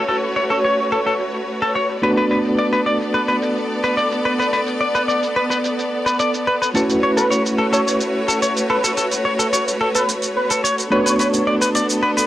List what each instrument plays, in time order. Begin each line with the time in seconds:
Already playing: reed electric piano A3 C#4 E4 F#4 B4, string section A3 F#4 B4 C#5
0.08 clean electric guitar A4, closed hi-hat, shaker
0.23 closed hi-hat, shaker
0.36 clean electric guitar C#5
0.50 clean electric guitar A4, analog synth lead C#5, closed hi-hat, shaker
0.65 clean electric guitar C#5, closed hi-hat, shaker
0.79 closed hi-hat, shaker
0.92 clean electric guitar A4
1.06 clean electric guitar A4, closed hi-hat, shaker
1.20 closed hi-hat, shaker
1.34 closed hi-hat, shaker
1.62 clean electric guitar A4, closed hi-hat, shaker
1.75 clean electric guitar C#5, closed hi-hat, shaker
1.89 closed hi-hat, shaker
2.02 reed electric piano A3 B3 D4 F#4 B4, string section B3 A4 D5, clean electric guitar B4
2.17 clean electric guitar B4, closed hi-hat, shaker
2.30 clean electric guitar B4, closed hi-hat, shaker
2.45 closed hi-hat, shaker
2.59 clean electric guitar D5
2.73 clean electric guitar B4, closed hi-hat, shaker
2.86 clean electric guitar D5, closed hi-hat, shaker
3.00 closed hi-hat, shaker
3.14 clean electric guitar B4
3.28 clean electric guitar B4, closed hi-hat, shaker
3.42 closed hi-hat, shaker
3.56 closed hi-hat, shaker
3.83 clean electric guitar B4, closed hi-hat, shaker
3.97 clean electric guitar D5, closed hi-hat, shaker
4.11 closed hi-hat, shaker
4.25 clean electric guitar B4
4.39 clean electric guitar B4, closed hi-hat, shaker
4.53 clean electric guitar B4, closed hi-hat, shaker
4.66 closed hi-hat, shaker
4.81 clean electric guitar D5
4.95 clean electric guitar B4, closed hi-hat, shaker
5.08 clean electric guitar D5, closed hi-hat, shaker
5.23 closed hi-hat, shaker
5.36 clean electric guitar B4
5.50 clean electric guitar B4, closed hi-hat, shaker
5.64 closed hi-hat, shaker
5.79 closed hi-hat, shaker
6.06 clean electric guitar B4, closed hi-hat, shaker
6.19 clean electric guitar D5, closed hi-hat, shaker
6.34 closed hi-hat, shaker
6.47 clean electric guitar B4
6.62 clean electric guitar B4, closed hi-hat, shaker
6.74 reed electric piano A3 C#4 E4 F#4 B4, string section A3 F#4 B4 C#5, clean electric guitar A4, closed hi-hat, shaker
6.89 closed hi-hat, shaker
7.03 clean electric guitar C#5
7.17 clean electric guitar A4, analog synth lead B4, closed hi-hat, shaker
7.30 clean electric guitar C#5, closed hi-hat, shaker
7.46 closed hi-hat, shaker
7.58 clean electric guitar A4
7.73 clean electric guitar A4, analog synth lead C#5, closed hi-hat, shaker
7.87 analog synth lead C#5, closed hi-hat, shaker
8.00 closed hi-hat, shaker
8.28 clean electric guitar A4, closed hi-hat, shaker
8.42 clean electric guitar C#5, closed hi-hat, shaker
8.56 closed hi-hat, shaker
8.70 clean electric guitar A4, analog synth lead B4
8.84 clean electric guitar A4, closed hi-hat, shaker
8.97 clean electric guitar A4, closed hi-hat, shaker
9.11 closed hi-hat, shaker
9.25 clean electric guitar C#5
9.39 clean electric guitar A4, closed hi-hat, shaker
9.53 clean electric guitar C#5, closed hi-hat, shaker
9.68 closed hi-hat, shaker
9.81 clean electric guitar A4
9.94 clean electric guitar A4, analog synth lead B4, closed hi-hat, shaker
10.08 closed hi-hat, shaker
10.22 closed hi-hat, shaker
10.37 analog synth lead B4
10.50 clean electric guitar A4, closed hi-hat, shaker
10.64 clean electric guitar C#5, closed hi-hat, shaker
10.78 closed hi-hat, shaker
10.91 reed electric piano A3 B3 D4 F#4 B4, string section B3 D4 A4, clean electric guitar B4, analog synth lead C#5
11.06 clean electric guitar B4, closed hi-hat, shaker
11.19 clean electric guitar B4, closed hi-hat, shaker
11.33 closed hi-hat, shaker
11.47 clean electric guitar D5
11.62 clean electric guitar B4, closed hi-hat, shaker
11.75 clean electric guitar D5, closed hi-hat, shaker
11.90 closed hi-hat, shaker
12.03 clean electric guitar B4
12.17 clean electric guitar B4, closed hi-hat, shaker